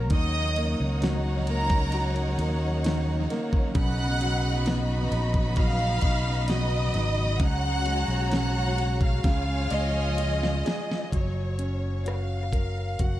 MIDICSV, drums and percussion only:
0, 0, Header, 1, 2, 480
1, 0, Start_track
1, 0, Key_signature, 6, "major"
1, 0, Tempo, 913242
1, 55, Time_signature, 4, 2, 24, 8
1, 4375, Tempo, 934579
1, 6879, End_track
2, 0, Start_track
2, 0, Title_t, "Drums"
2, 52, Note_on_c, 9, 51, 72
2, 56, Note_on_c, 9, 36, 98
2, 105, Note_off_c, 9, 51, 0
2, 108, Note_off_c, 9, 36, 0
2, 295, Note_on_c, 9, 51, 65
2, 348, Note_off_c, 9, 51, 0
2, 536, Note_on_c, 9, 51, 60
2, 544, Note_on_c, 9, 38, 107
2, 589, Note_off_c, 9, 51, 0
2, 597, Note_off_c, 9, 38, 0
2, 773, Note_on_c, 9, 51, 61
2, 825, Note_off_c, 9, 51, 0
2, 891, Note_on_c, 9, 51, 42
2, 894, Note_on_c, 9, 36, 98
2, 944, Note_off_c, 9, 51, 0
2, 946, Note_off_c, 9, 36, 0
2, 1009, Note_on_c, 9, 51, 67
2, 1062, Note_off_c, 9, 51, 0
2, 1134, Note_on_c, 9, 51, 41
2, 1187, Note_off_c, 9, 51, 0
2, 1255, Note_on_c, 9, 51, 64
2, 1307, Note_off_c, 9, 51, 0
2, 1495, Note_on_c, 9, 51, 75
2, 1505, Note_on_c, 9, 38, 98
2, 1547, Note_off_c, 9, 51, 0
2, 1558, Note_off_c, 9, 38, 0
2, 1736, Note_on_c, 9, 51, 51
2, 1743, Note_on_c, 9, 38, 37
2, 1789, Note_off_c, 9, 51, 0
2, 1796, Note_off_c, 9, 38, 0
2, 1854, Note_on_c, 9, 36, 78
2, 1907, Note_off_c, 9, 36, 0
2, 1970, Note_on_c, 9, 51, 65
2, 1972, Note_on_c, 9, 36, 100
2, 2023, Note_off_c, 9, 51, 0
2, 2025, Note_off_c, 9, 36, 0
2, 2212, Note_on_c, 9, 51, 67
2, 2265, Note_off_c, 9, 51, 0
2, 2449, Note_on_c, 9, 51, 58
2, 2457, Note_on_c, 9, 38, 108
2, 2502, Note_off_c, 9, 51, 0
2, 2510, Note_off_c, 9, 38, 0
2, 2690, Note_on_c, 9, 51, 63
2, 2743, Note_off_c, 9, 51, 0
2, 2806, Note_on_c, 9, 51, 45
2, 2807, Note_on_c, 9, 36, 93
2, 2859, Note_off_c, 9, 36, 0
2, 2859, Note_off_c, 9, 51, 0
2, 2922, Note_on_c, 9, 51, 66
2, 2927, Note_on_c, 9, 36, 88
2, 2975, Note_off_c, 9, 51, 0
2, 2980, Note_off_c, 9, 36, 0
2, 3044, Note_on_c, 9, 51, 39
2, 3096, Note_off_c, 9, 51, 0
2, 3161, Note_on_c, 9, 51, 67
2, 3166, Note_on_c, 9, 36, 97
2, 3214, Note_off_c, 9, 51, 0
2, 3219, Note_off_c, 9, 36, 0
2, 3405, Note_on_c, 9, 51, 75
2, 3415, Note_on_c, 9, 38, 89
2, 3457, Note_off_c, 9, 51, 0
2, 3468, Note_off_c, 9, 38, 0
2, 3647, Note_on_c, 9, 51, 52
2, 3654, Note_on_c, 9, 38, 35
2, 3700, Note_off_c, 9, 51, 0
2, 3707, Note_off_c, 9, 38, 0
2, 3888, Note_on_c, 9, 36, 96
2, 3888, Note_on_c, 9, 51, 68
2, 3940, Note_off_c, 9, 51, 0
2, 3941, Note_off_c, 9, 36, 0
2, 4129, Note_on_c, 9, 51, 63
2, 4182, Note_off_c, 9, 51, 0
2, 4370, Note_on_c, 9, 51, 63
2, 4379, Note_on_c, 9, 38, 112
2, 4422, Note_off_c, 9, 51, 0
2, 4430, Note_off_c, 9, 38, 0
2, 4611, Note_on_c, 9, 51, 60
2, 4662, Note_off_c, 9, 51, 0
2, 4726, Note_on_c, 9, 36, 87
2, 4727, Note_on_c, 9, 51, 42
2, 4777, Note_off_c, 9, 36, 0
2, 4779, Note_off_c, 9, 51, 0
2, 4846, Note_on_c, 9, 51, 68
2, 4847, Note_on_c, 9, 36, 86
2, 4857, Note_on_c, 9, 38, 58
2, 4897, Note_off_c, 9, 51, 0
2, 4898, Note_off_c, 9, 36, 0
2, 4908, Note_off_c, 9, 38, 0
2, 5084, Note_on_c, 9, 51, 66
2, 5135, Note_off_c, 9, 51, 0
2, 5329, Note_on_c, 9, 51, 77
2, 5380, Note_off_c, 9, 51, 0
2, 5459, Note_on_c, 9, 38, 73
2, 5510, Note_off_c, 9, 38, 0
2, 5575, Note_on_c, 9, 51, 49
2, 5583, Note_on_c, 9, 38, 100
2, 5627, Note_off_c, 9, 51, 0
2, 5634, Note_off_c, 9, 38, 0
2, 5706, Note_on_c, 9, 38, 81
2, 5757, Note_off_c, 9, 38, 0
2, 5814, Note_on_c, 9, 36, 69
2, 5817, Note_on_c, 9, 42, 63
2, 5865, Note_off_c, 9, 36, 0
2, 5868, Note_off_c, 9, 42, 0
2, 6052, Note_on_c, 9, 42, 62
2, 6103, Note_off_c, 9, 42, 0
2, 6295, Note_on_c, 9, 42, 56
2, 6303, Note_on_c, 9, 37, 81
2, 6346, Note_off_c, 9, 42, 0
2, 6354, Note_off_c, 9, 37, 0
2, 6533, Note_on_c, 9, 36, 62
2, 6537, Note_on_c, 9, 42, 60
2, 6585, Note_off_c, 9, 36, 0
2, 6588, Note_off_c, 9, 42, 0
2, 6773, Note_on_c, 9, 42, 61
2, 6775, Note_on_c, 9, 36, 66
2, 6824, Note_off_c, 9, 42, 0
2, 6826, Note_off_c, 9, 36, 0
2, 6879, End_track
0, 0, End_of_file